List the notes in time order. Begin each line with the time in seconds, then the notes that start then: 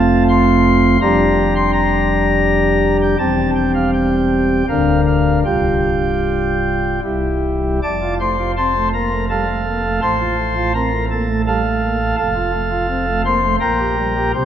Already playing: F1 F2 A3 C4 F4 A5
0.29 C6
1.01 F1 F2 G3 D4 G4 A#5
1.55 C6
1.73 A#5
3.01 G5
3.19 E1 E2 G3 C4 G4 A5
3.55 G5
3.74 F5
3.93 G5
4.68 D1 D2 D3 D4 A#4 F5
5.06 F5
5.45 C1 C2 G3 F4 G4 G5
7.03 C1 C2 G3 E4 G4
7.83 F1 F2 D5 A5 D6
8.02 F4
8.20 A3 C5 C6
8.39 F4
8.57 C4 C5 A5 C6
8.76 A3
8.94 A#3 A#4 A#5
9.12 A3
9.30 G3 A4 F5 A5
9.49 A3
9.67 A#3
9.84 A3
10.01 A1 A2 C5 A5 C6
10.20 F4
10.38 A3
10.55 F4
10.74 C4 A#4 A#5
10.92 A3
11.11 A#3 A4 A5
11.28 A3
11.47 G3 A4 F5 A5
11.66 A3
11.83 A#3
12.01 A3
12.18 F1 F2 A4 F5 A5
12.36 F4
12.53 A3
12.71 F4
12.89 C4
13.07 A3
13.25 A#3 C5 C6
13.43 A3
13.60 A#1 A#2 A#4 G5 A#5
13.79 G4
13.98 G3
14.16 G4
14.33 C2 C3 G4 C5 G5